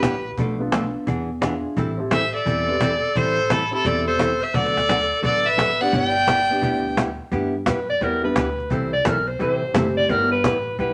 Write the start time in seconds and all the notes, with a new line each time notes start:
Already playing: G4 B4
0.03 A1 G3 B3 E4 G4, cajon slap
0.37 B1 B2 F3 A3 D4 A4, cajon bass
0.59 B3 D4 F4 A4
0.72 B2 F3 A3 D4 A4, cajon slap
1.07 E2 E3 B3 D4 G#4, cajon bass
1.41 E3 B3 D4 E4 F4 G#4, cajon slap
1.77 A1 E3 G3 C4 E4 A4, cajon bass
1.98 C4 E4 G4 A4
2.11 E3 G3 C4 E4 A4 C5 E5, cajon slap
2.34 A4 D5
2.45 E1 E3 G3 C4 E4 A4, cajon bass
2.68 C4 E4 G4 B4
2.81 E3 G3 C4 E4 A4, cajon slap
3.15 A1 E3 G3 C4 E4 A4 C5, cajon bass
3.50 E3 G3 C4 E4 A4, cajon slap
3.71 C4 E4 G4 A4
3.85 E1 E3 G3 C4 E4 A4 D5, cajon bass
4.07 A4 C5
4.19 E3 G3 C4 E4 A4, cajon slap
4.42 C5 E5
4.54 D2 D3 F#3 B3 F#4 A4 D5, cajon bass
4.66 cajon slap
4.77 cajon slap
4.89 D3 F#3 B3 F#4 A4, cajon slap
5.22 A1 D3 F#3 B3 F#4 A4 D5, cajon bass
5.46 B4 E5
5.57 D3 F#3 B3 F#4 A4, cajon slap
5.80 B3 D4 E4 G4 D5 F#5
5.92 G1 G3 B3 E4 G4 D5 G5, cajon bass
6.27 G3 B3 E4 G4, cajon slap
6.50 B3 D4 E4 G4
6.62 D2 G3 B3 E4 G4, cajon bass
6.97 G3 B3 E4 G4, cajon slap
7.31 G2 G3 B3 D4 E4 G4, cajon bass, cajon slap
7.66 F#2 G3 B3 E4 G4 B4, cajon bass, cajon slap
7.89 D5, cajon slap
8.01 E2 G3 B3 E4 G4 A#4, cajon bass, cajon slap
8.22 G3 B3 D4 E4 A4 B4
8.36 D2 G3 B3 E4 G4 B4, cajon bass, cajon slap
8.58 cajon slap
8.70 C2 C3 E3 G3 C4 E4 A4 C5, cajon bass, cajon slap
8.93 D5
9.05 B1 C3 E3 G3 C4 E4 A4 A#4, cajon bass, cajon slap
9.27 C5, cajon slap
9.39 A1 C3 E3 G3 C4 E4 A4 C5, cajon bass, cajon slap
9.73 F#1 C3 E3 G3 A3 C4 E4 G4 A4 C5, cajon bass, cajon slap
9.97 D5, cajon slap
10.09 G1 G3 B3 E4 G4 A#4, cajon bass, cajon slap
10.31 B4
10.44 A1 G3 B3 E4 G4 B4, cajon bass, cajon slap
10.79 B1 G3 B3 E4 G4 B4, cajon bass, cajon slap